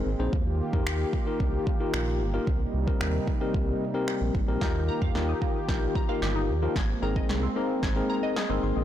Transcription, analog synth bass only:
0.06 0.16 G#1 medium
0.19 0.29 A#1 medium
0.33 0.62 D#2 loud
0.73 0.83 F2 loud
0.86 1.05 D#2 medium
1.40 1.59 C2 loud
1.94 2.22 A#1 medium
2.20 2.40 G1 medium
2.47 2.66 C2 loud
2.74 2.93 C2 loud
3.01 3.20 D#2 medium
3.54 3.74 C2 medium
4.21 4.31 A#1 medium
4.35 4.44 G#1 medium
4.48 4.58 A#1 medium
4.62 4.90 D#2 loud
5.02 5.11 F2 medium
5.15 5.34 D#2 medium
5.69 5.88 A#1 medium
6.22 6.51 G1 medium
6.49 6.68 D#2 medium
6.76 6.95 G#1 loud
7.02 7.22 G#1 medium
7.29 7.48 C2 medium
7.83 8.02 G#1 loud
8.50 8.59 G1 medium
8.63 8.73 G#1 medium
8.77 8.84 A#1 medium

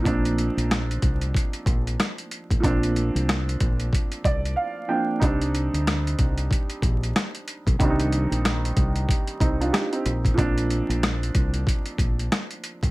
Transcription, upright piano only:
0.00 2.58 F3 medium
0.00 2.59 A#3 medium
0.00 0.05 C4 medium
0.00 5.20 D#4 medium
0.05 2.59 C4 medium
0.05 2.60 D4 medium
2.60 4.84 F3 medium
2.60 4.84 A#3 medium
2.60 4.85 C4 medium
2.64 4.86 D4 medium
4.25 4.55 D5 medium
4.56 4.87 F5 medium
4.88 5.21 F3 medium
4.88 5.21 A#3 soft
4.88 5.21 C4 soft
4.88 5.22 D4 medium
4.88 5.19 G5 medium
5.20 7.75 G3 medium
5.20 7.76 C4 medium
5.20 7.75 D#4 medium
5.24 7.77 D4 medium
7.79 10.01 D#3 medium
7.79 10.02 G3 medium
7.79 9.07 C4 medium
7.83 7.89 D4 medium
7.89 9.11 D#4 medium
9.40 9.59 C4 medium
9.40 9.59 D#4 medium
9.60 9.73 D4 medium
9.60 9.73 F4 medium
9.73 9.91 D#4 medium
9.73 9.91 G4 medium
9.92 10.23 C4 medium
9.92 10.23 D#4 medium
10.34 12.90 F3 medium
10.34 12.91 A#3 medium
10.34 12.91 C4 medium
10.38 12.91 D4 medium

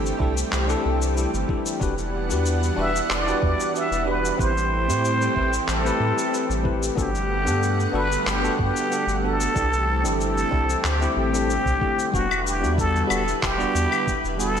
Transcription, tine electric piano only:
0.00 0.16 D4 medium
0.00 0.16 E4 medium
0.00 0.17 G4 medium
0.00 0.17 A4 medium
0.19 0.32 D4 medium
0.19 0.32 E4 medium
0.19 0.33 G4 medium
0.19 0.33 A4 loud
0.67 1.12 D4 medium
0.67 1.13 E4 medium
0.67 1.13 G4 medium
0.67 1.14 A4 loud
1.15 1.29 D4 medium
1.15 1.29 E4 medium
1.15 1.30 G4 medium
1.15 1.30 A4 medium
1.48 1.77 D4 medium
1.48 1.77 E4 medium
1.48 1.78 G4 medium
1.48 1.78 A4 medium
1.80 1.93 D4 medium
1.80 1.94 F#4 medium
1.80 1.94 G4 medium
1.80 1.95 B4 loud
2.29 2.74 D4 medium
2.29 2.75 F#4 medium
2.29 2.75 G4 medium
2.29 2.75 B4 medium
2.76 2.90 D4 medium
2.76 2.90 F#4 medium
2.76 2.91 G4 medium
2.76 2.91 B4 medium
3.26 3.71 D4 loud
3.26 3.71 F#4 medium
3.26 3.72 G4 medium
3.26 3.72 B4 loud
3.74 3.87 D4 medium
3.74 3.87 F#4 medium
3.74 3.88 G4 medium
3.74 3.89 B4 medium
4.05 4.35 D4 medium
4.05 4.35 F#4 medium
4.05 4.36 G4 medium
4.05 4.36 B4 medium
4.37 4.51 C4 medium
4.37 4.51 E4 medium
4.37 4.52 G4 medium
4.37 4.52 B4 loud
4.87 5.32 C4 medium
4.87 5.33 E4 medium
4.87 5.33 G4 medium
4.87 5.34 C5 medium
5.35 5.48 C4 medium
5.35 5.49 E4 medium
5.35 5.49 G4 medium
5.35 5.50 B4 loud
5.84 6.29 C4 medium
5.84 6.29 E4 medium
5.84 6.30 G4 medium
5.84 6.30 B4 loud
6.31 6.45 C4 medium
6.31 6.45 E4 medium
6.31 6.46 G4 medium
6.31 6.46 B4 medium
6.63 6.93 C4 medium
6.63 6.93 E4 medium
6.63 6.94 G4 medium
6.63 6.94 B4 medium
6.95 7.09 B3 medium
6.95 7.10 D4 medium
6.95 7.10 F#4 medium
6.95 7.10 A4 loud
7.45 7.90 B3 medium
7.45 7.90 D4 medium
7.45 7.91 A4 medium
7.45 7.91 F#5 medium
7.92 8.06 B3 medium
7.92 8.06 D4 medium
7.92 8.07 F#4 medium
7.92 8.07 A4 loud
8.42 8.87 B3 medium
8.42 8.87 D4 medium
8.42 8.88 F#4 medium
8.42 8.88 A4 loud
8.90 9.03 B3 medium
8.90 9.04 D4 medium
8.90 9.04 F#4 medium
8.90 9.05 A4 medium
9.23 9.52 B3 medium
9.23 9.52 D4 medium
9.23 9.53 F#4 medium
9.23 9.53 A4 medium
9.54 9.68 D4 medium
9.54 9.68 E4 medium
9.54 9.69 G4 medium
9.54 9.69 A4 loud
10.03 10.48 D4 medium
10.03 10.49 E4 medium
10.03 10.49 G4 medium
10.03 10.49 A4 medium
10.51 10.64 D4 medium
10.51 10.65 E4 medium
10.51 10.65 G4 medium
10.51 10.65 A4 loud
11.00 11.30 A3 medium
11.00 11.30 C4 medium
11.00 11.31 E4 medium
11.00 11.31 G4 loud
11.33 11.52 A3 medium
11.33 11.52 C4 medium
11.33 11.53 E4 medium
11.33 11.53 A4 medium
11.79 12.09 A3 medium
11.79 12.10 C4 medium
11.79 12.10 E4 medium
11.79 12.11 G4 medium
12.12 12.25 G3 medium
12.12 12.26 B3 medium
12.12 12.26 D4 medium
12.12 12.27 F#4 loud
12.60 13.06 G3 medium
12.60 13.06 B3 medium
12.60 13.07 D4 medium
12.60 13.07 F#4 medium
13.08 13.22 G3 loud
13.08 13.22 B3 medium
13.08 13.22 D4 medium
13.08 13.23 F#4 loud
13.57 13.87 G3 loud
13.57 13.88 B3 medium
13.57 13.88 D4 medium
13.57 13.89 F#4 loud
13.90 14.09 G3 medium
13.90 14.10 B3 medium
13.90 14.10 D4 medium
13.90 14.11 G4 medium
14.37 14.60 G3 medium
14.37 14.60 B3 medium
14.37 14.60 D4 medium
14.37 14.60 F#4 medium

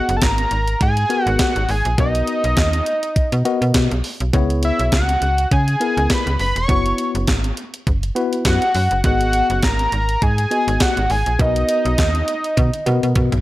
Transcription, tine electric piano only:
0.00 0.22 B3 medium
0.00 0.22 F#4 medium
0.00 0.22 G#4 medium
0.00 0.22 D#5 medium
1.10 1.56 B3 medium
1.10 1.56 F#4 medium
1.10 1.56 G#4 medium
1.10 1.56 A#4 medium
1.98 2.57 B3 medium
1.98 2.57 F#4 medium
1.98 2.58 A#4 medium
1.98 2.58 D#5 medium
3.45 3.91 B3 medium
3.45 3.91 F#4 medium
3.45 3.91 A#4 medium
3.45 3.92 D#5 loud
4.33 4.93 B3 medium
4.33 4.93 E4 medium
4.33 4.93 G#4 medium
4.33 4.93 C#5 loud
5.80 6.27 B3 medium
5.80 6.27 E4 medium
5.80 6.27 G#4 medium
5.80 6.27 A#4 medium
6.68 7.28 B3 medium
6.68 7.28 E4 medium
6.68 7.28 F#4 medium
6.68 7.28 C#5 medium
8.15 8.62 B3 medium
8.15 8.62 E4 medium
8.15 8.62 F#4 medium
8.15 8.62 B4 loud
9.04 9.63 B3 medium
9.04 9.63 F#4 medium
9.04 9.63 G#4 medium
9.04 9.64 D#5 medium
10.51 10.97 B3 medium
10.51 10.97 F#4 medium
10.51 10.97 G#4 medium
10.51 10.97 D#5 medium
11.39 11.98 B3 medium
11.39 11.98 F#4 medium
11.39 11.99 A#4 medium
11.39 11.99 D#5 medium
12.86 13.32 B3 medium
12.86 13.33 F#4 medium
12.86 13.33 A#4 medium
12.86 13.33 D#5 medium

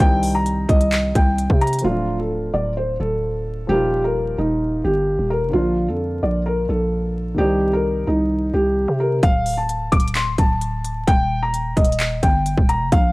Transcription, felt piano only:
0.00 0.32 G5 loud
0.35 0.67 A#5 medium
0.69 1.12 D#5 medium
1.16 1.59 G5 medium
1.61 1.80 A#5 medium
1.85 2.17 F4 loud
2.19 2.52 A4 medium
2.54 2.72 D5 medium
2.77 2.95 C5 medium
3.00 3.65 A4 medium
3.69 4.02 G4 loud
4.04 4.37 A#4 medium
4.38 4.82 D#4 medium
4.84 5.28 G4 medium
5.30 5.49 A#4 medium
5.53 5.86 F4 medium
5.88 6.21 A4 medium
6.23 6.41 D5 medium
6.46 6.64 A#4 medium
6.69 7.34 A4 medium
7.38 7.71 G4 loud
7.73 8.06 A#4 medium
8.07 8.51 D#4 medium
8.54 8.97 G4 medium
9.00 9.18 A#4 medium
9.23 9.56 F5 loud
9.57 9.90 A5 medium
9.92 10.10 D6 medium
10.15 10.34 C6 medium
10.39 11.04 A5 medium
11.07 11.40 G5 loud
11.43 11.75 A#5 medium
11.76 12.20 D#5 medium
12.23 12.66 G5 medium
12.69 12.88 A#5 medium
12.92 13.12 F5 loud

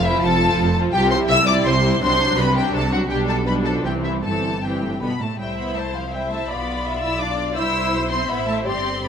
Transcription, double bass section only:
0.00 0.18 F1 medium
0.23 0.54 F1 medium
0.57 0.89 F1 medium
0.92 1.24 C2 medium
1.28 1.60 C2 medium
1.64 1.96 C2 medium
2.00 2.32 C2 medium
2.36 2.68 C2 medium
2.73 3.05 C2 medium
3.09 3.80 B1 medium
3.83 4.23 C2 medium
4.23 5.00 G1 soft
5.01 5.09 G1 soft
5.39 6.45 C2 soft
6.49 7.57 B1 soft
7.57 7.93 C2 medium
7.93 8.30 B1 medium
8.29 8.67 A1 medium
8.67 9.08 G1 soft

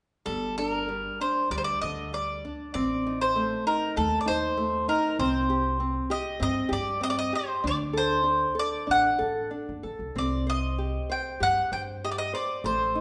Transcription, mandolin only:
0.26 0.57 A4 medium
0.58 0.69 A4 medium
0.69 1.21 A#4 medium
1.21 1.50 C5 medium
1.51 1.57 D5 medium
1.58 1.64 C5 medium
1.64 1.81 D5 medium
1.81 2.14 D#5 medium
2.14 2.71 D5 medium
2.74 3.21 D5 medium
3.21 3.66 C5 medium
3.67 3.97 A#4 medium
3.97 4.20 A4 medium
4.21 4.27 D5 medium
4.28 4.89 C5 medium
4.89 5.19 A#4 medium
5.20 6.11 C5 medium
6.11 6.41 D#5 medium
6.43 6.72 D#5 medium
6.73 7.03 D5 medium
7.03 7.10 D#5 medium
7.10 7.17 D5 medium
7.19 7.35 D#5 medium
7.35 7.66 C5 medium
7.67 7.75 D5 medium
7.97 8.59 C5 medium
8.59 8.91 D5 medium
8.91 9.49 F#5 medium
10.18 10.49 D5 medium
10.50 11.13 D#5 medium
11.12 11.42 G5 medium
11.43 11.72 F#5 medium
11.73 11.81 G5 medium
12.05 12.11 D#5 medium
12.12 12.18 D5 medium
12.18 12.34 D#5 medium
12.35 12.65 D5 medium
12.66 13.01 C5 medium

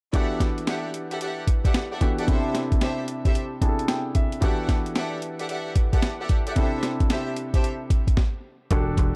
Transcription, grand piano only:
0.13 1.97 E3 medium
0.13 1.97 B3 medium
0.13 1.97 D4 medium
0.13 1.98 F#4 medium
0.13 1.98 G4 medium
0.13 1.98 A4 medium
2.01 2.28 E3 medium
2.01 2.28 B3 medium
2.01 2.26 D4 medium
2.01 2.28 F#4 medium
2.01 2.27 G4 medium
2.01 2.28 A4 medium
2.27 3.58 C3 medium
2.27 3.59 D4 medium
2.27 3.59 E4 medium
2.27 3.59 G4 medium
2.27 3.60 A4 medium
3.61 4.42 C3 medium
3.61 4.41 D4 medium
3.61 4.42 E4 soft
3.61 4.42 G4 medium
3.61 3.70 G#4 soft
3.61 3.87 A5 medium
3.69 4.42 A4 medium
3.89 4.14 G5 medium
4.16 4.40 E5 medium
4.41 6.52 E3 medium
4.41 6.52 B3 medium
4.41 6.52 D4 medium
4.41 6.53 F#4 medium
4.41 6.53 G4 medium
4.41 6.53 A4 medium
6.55 8.13 C3 medium
6.55 8.14 D4 medium
6.55 8.14 E4 medium
6.55 8.14 G4 medium
6.55 8.15 A4 medium
8.71 9.16 D4 medium
8.71 9.16 F#4 medium
8.71 9.16 G4 medium
8.71 9.16 A4 medium

